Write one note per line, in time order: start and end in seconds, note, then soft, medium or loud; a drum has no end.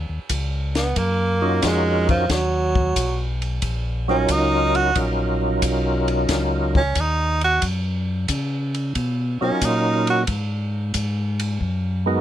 0.09 0.19 D#2 soft
0.29 0.94 C#2 medium
0.29 kick soft
0.29 hi-hat pedal medium
0.29 ride medium
0.75 0.99 B3 medium
0.75 snare soft
0.75 ride soft
0.96 1.61 F#2 medium
0.96 1.67 A#3 medium
0.96 kick soft
0.96 ride medium
1.42 2.25 C#4 medium
1.42 2.25 D#4 medium
1.42 2.26 F4 medium
1.42 2.25 F#4 medium
1.42 2.26 A#4 medium
1.62 2.28 F2 medium
1.62 2.09 G#3 medium
1.62 kick soft
1.62 snare soft
1.62 hi-hat pedal medium
1.62 ride medium
2.09 2.33 F3 medium
2.09 kick medium
2.09 ride soft
2.29 2.94 D#2 medium
2.29 3.43 F#3 medium
2.29 kick soft
2.29 snare soft
2.29 ride medium
2.75 kick medium
2.96 3.61 B1 medium
2.96 kick soft
2.96 hi-hat pedal medium
2.96 ride medium
3.42 ride soft
3.62 4.27 A#1 medium
3.62 kick soft
3.62 ride medium
4.08 4.91 F#3 medium
4.08 4.92 C#4 medium
4.08 4.33 C#4 medium
4.08 4.92 D#4 medium
4.08 4.92 F4 medium
4.08 4.92 A#4 medium
4.28 4.94 C#2 medium
4.28 4.77 D#4 medium
4.28 kick soft
4.28 hi-hat pedal medium
4.28 ride medium
4.75 4.96 F#4 medium
4.75 ride soft
4.95 5.60 A#1 medium
4.95 6.83 F#3 medium
4.95 6.83 C#4 medium
4.95 6.83 D#4 medium
4.95 6.83 F4 medium
4.95 6.83 A#4 medium
4.95 kick soft
4.95 ride medium
5.62 6.27 B1 medium
5.62 kick soft
5.62 hi-hat pedal medium
5.62 ride medium
6.08 ride soft
6.29 6.93 C#2 medium
6.29 kick soft
6.29 snare soft
6.29 ride medium
6.75 7.01 C#4 medium
6.75 kick medium
6.95 7.60 D#2 medium
6.95 kick soft
6.95 hi-hat pedal medium
6.95 ride medium
7.00 7.44 D#4 medium
7.41 7.62 F#4 loud
7.41 ride soft
7.62 8.27 F#2 medium
7.62 kick soft
7.62 ride medium
8.28 8.93 C#3 medium
8.28 kick soft
8.28 hi-hat pedal medium
8.28 ride medium
8.74 ride soft
8.95 9.38 B2 medium
8.95 kick soft
8.95 ride medium
9.41 9.52 B2 soft
9.41 10.24 F#3 medium
9.41 10.24 C#4 medium
9.41 9.66 C#4 medium
9.41 10.25 D#4 medium
9.41 10.25 F4 medium
9.41 10.25 A#4 medium
9.61 10.26 A#2 medium
9.61 10.09 D#4 medium
9.61 kick soft
9.61 hi-hat pedal medium
9.61 ride medium
10.07 10.22 F#4 medium
10.07 ride soft
10.27 10.92 G#2 medium
10.27 kick soft
10.27 ride medium
10.94 11.59 G#2 medium
10.94 kick soft
10.94 hi-hat pedal medium
10.94 ride medium
11.40 ride medium
11.61 12.21 F#2 medium
11.61 kick soft
12.06 12.21 G#3 medium
12.06 12.21 B3 medium
12.06 12.21 D#4 medium
12.06 12.21 F#4 medium
12.06 12.21 A#4 medium